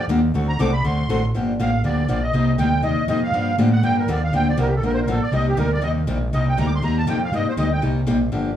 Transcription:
0.08 D#2 D3 F3 A#3 D4 G4
0.33 D2 D3 A3 C4 F#4 A4
0.48 A#5
0.58 C2 D3 A3 C4 F#4 A4 D6
0.73 B5
0.83 D2 D3 A3 C4 F#4 A4 C6
1.08 A1 D3 A3 C4 F#4 A4
1.33 G1 D3 F3 A#3 D4 G4
1.58 A1 D3 F3 A#3 D4 G4 F5
1.83 D2 D3 F3 A#3 D4 G4 D5
2.08 A#1 D3 F3 A#3 D4 G4 D5
2.23 D#5
2.32 C2 C3 G3 A#3 D#4 G4
2.57 D2 C3 G3 A#3 D#4 G4 G5
2.82 D#2 C3 G3 A#3 D#4 G4 D#5
2.96 D#2
3.07 F2 C3 G3 A#3 D#4 G4 D#5
3.23 F5
3.31 G2 D3 F3 A#3 D4 G4
3.57 A2 D3 F3 A#3 D4 G4
3.73 F#5
3.82 G2 D3 F3 A#3 D4 G4 G5
3.99 A#4
4.07 D#2 D3 F3 A#3 D4 G4 D5
4.24 F5
4.32 D2 D3 F3 A#3 D4 G4 G5
4.49 D5
4.56 C2 D3 F3 A#3 D4 G4 A#4
4.68 G4
4.76 A4
4.81 A#1 D3 F3 A#3 D4 G4
4.85 A#4
4.94 C5
5.02 A1 A#4
5.08 D3 F3 A#3 D4 G4 A4
5.20 A1 D5
5.30 C2 C3 G3 A#3 D#4 G4 D#5
5.49 G4
5.56 D2 C3 G3 A#3 D#4 G4 A#4
5.73 D5
5.81 D#2 C3 G3 A#3 D#4 G4 D#5
6.06 A#1 C3 G3 A#3 D#4 G4
6.32 C2 C3 G3 A#3 D#4 G4 D#5
6.49 G5
6.57 D2 C3 G3 A#3 D#4 G4 A#5
6.67 D6
6.75 C6
6.82 D#2 C3 G3 A#3 D#4 G4 A#5
6.98 A5
7.06 F2 C3 G3 A#3 D#4 G4 G5
7.24 F5
7.32 G2 C3 G3 A#3 D#4 G4 D#5
7.46 G2 C5
7.57 D2 C3 G3 A#3 D#4 G4 D#5
7.73 G5
7.81 C2 C3 G3 A#3 D#4 G4
8.06 A#1 C3 G3 A#3 D#4 G4
8.31 G1 D3 F3 A#3 D4 G4

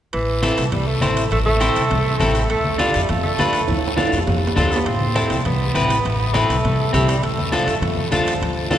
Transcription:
0.13 A1 E3, high conga, high timbale, long guiro
0.42 C4 E4 A4, high conga, high timbale, short guiro
0.58 C2, high timbale, short guiro
0.72 C2 G3, high conga, low conga, high timbale, long guiro
0.87 A3
1.01 A1 C4 E4 C5, high conga, high timbale, short guiro
1.17 high timbale, short guiro
1.31 A1 A3, high conga, low conga, high timbale, long guiro
1.46 A3, high conga
1.60 C4 E4 C5, high conga, high timbale, short guiro
1.75 C2, high timbale, short guiro
1.90 C2, high conga, low conga, high timbale, long guiro
2.20 A1 C4 E4 A4, high conga, low conga, high timbale, low timbale, short guiro
2.35 high timbale, short guiro
2.49 D2 A3, high conga, high timbale, long guiro
2.64 high conga
2.78 G3 D4 F4 A4, high conga, high timbale, short guiro
2.94 F2, high timbale, short guiro
3.09 F2 A3, high conga, low conga, high timbale, long guiro
3.23 A3, high conga
3.39 D2 D4 F4 B4, high conga, high timbale, low timbale, short guiro
3.53 high timbale, short guiro
3.68 D2, high conga, low conga, high timbale, long guiro
3.78 high timbale
3.87 high timbale
3.97 D4 F4 A4, high conga, high timbale, short guiro
4.07 high timbale
4.12 F2, short guiro
4.17 low timbale
4.27 F2, high conga, low conga, low timbale, long guiro
4.37 low timbale
4.47 low timbale
4.56 D2 C4 D4 F4 A4, high conga, low conga, short guiro
4.66 low timbale
4.72 B3, short guiro
4.76 low timbale
4.86 A1 C4, high conga, high timbale, long guiro
5.00 high conga
5.15 C4 E4 A4, high conga, high timbale, short guiro
5.30 C2, high timbale, short guiro
5.45 C2 B3, high conga, low conga, high timbale, long guiro
5.75 A1 C4 E4 B4, high conga, high timbale, short guiro
5.90 high timbale, short guiro
6.05 A1, high conga, high timbale, long guiro
6.34 A3 C4 E4 B4, high conga, high timbale, short guiro
6.50 C2, high timbale, short guiro
6.64 C2, high conga, low conga, high timbale, long guiro
6.93 C2 A3 C4 E4 G4, high conga, low conga, high timbale, short guiro
7.08 G3, high timbale, short guiro
7.23 D2 A3, high conga, high timbale, long guiro
7.38 high conga
7.52 F3 D4 F4 A4, high conga, high timbale, short guiro
7.67 F2 A3, high timbale, short guiro
7.82 F2, high conga, low conga, high timbale, long guiro
7.97 high conga
8.11 D2 F3 D4 F4 A4, high conga, high timbale, low timbale, short guiro
8.27 high timbale, short guiro
8.41 D2, high conga, low conga, high timbale, long guiro
8.71 D4 F4 A4, high conga, high timbale, short guiro

